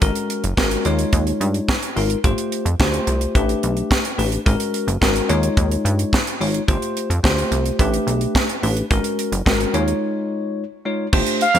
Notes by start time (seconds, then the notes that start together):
0.01 G#1 G#3 C#4 F#4 A#4, kick, closed hi-hat
0.15 closed hi-hat
0.30 closed hi-hat
0.44 F#1, closed hi-hat
0.57 G#1 G#3 C#4 F#4 A#4, kick, snare
0.71 closed hi-hat
0.85 D#2 G#3 D#4 F4 C#5, closed hi-hat
0.99 closed hi-hat
1.13 D#2, kick, closed hi-hat
1.27 closed hi-hat
1.41 G2, closed hi-hat
1.54 closed hi-hat
1.69 kick, snare
1.83 closed hi-hat
1.96 G#1 G#3 D#4 F4 A#4, open hi-hat
2.10 closed hi-hat
2.24 G1 A3 F4 G4 C5, kick, closed hi-hat
2.38 closed hi-hat
2.52 closed hi-hat
2.65 F2, closed hi-hat
2.80 D2 A3 F4 G4 C5, kick, snare
2.94 closed hi-hat
3.07 C2, closed hi-hat
3.21 closed hi-hat
3.35 A1 A3 D4 G4 B4, kick, closed hi-hat
3.49 closed hi-hat
3.63 B1, closed hi-hat
3.77 closed hi-hat
3.91 kick, snare
4.05 closed hi-hat
4.18 A1 A3 D4 G4 B4, open hi-hat
4.32 closed hi-hat
4.46 G#1 G#3 C#4 F#4 A#4, kick, closed hi-hat
4.60 closed hi-hat
4.74 closed hi-hat
4.88 F#1, closed hi-hat
5.01 G#1 G#3 C#4 F#4 A#4, kick, snare
5.16 closed hi-hat
5.29 D#2 G#3 D#4 F4 C#5, closed hi-hat
5.43 closed hi-hat
5.57 D#2, kick, closed hi-hat
5.72 closed hi-hat
5.85 G2, closed hi-hat
5.99 closed hi-hat
6.13 kick, snare
6.27 closed hi-hat
6.40 G#1 G#3 D#4 F4 C#5, open hi-hat
6.54 closed hi-hat
6.68 G1 A3 F4 G4 C5, kick, closed hi-hat
6.82 closed hi-hat
6.97 closed hi-hat
7.10 F2, closed hi-hat
7.23 D2 A3 F4 G4 C5, kick, snare
7.38 closed hi-hat
7.52 C2, closed hi-hat
7.66 closed hi-hat
7.79 A1 A3 D4 G4 B4, kick, closed hi-hat
7.94 closed hi-hat
8.07 B1, closed hi-hat
8.21 closed hi-hat
8.35 kick, snare
8.49 closed hi-hat
8.62 A1 A3 D4 G4 B4, open hi-hat
8.77 closed hi-hat
8.90 G#1 G#3 C#4 F#4 A#4, kick, closed hi-hat
9.04 closed hi-hat
9.19 closed hi-hat
9.32 F#1, closed hi-hat
9.46 G#1 G#3 C#4 F#4 A#4, kick, snare
9.60 closed hi-hat
9.74 D#2 G#3 D#4 F4 C#5, closed hi-hat
9.88 closed hi-hat
10.85 G#3 D#4 F4 C#5
11.13 G1 A3 D4 F4 G4 C5, kick, crash
11.27 closed hi-hat
11.41 F5, closed hi-hat
11.54 F2 A3 D4 F4 G4 C5, closed hi-hat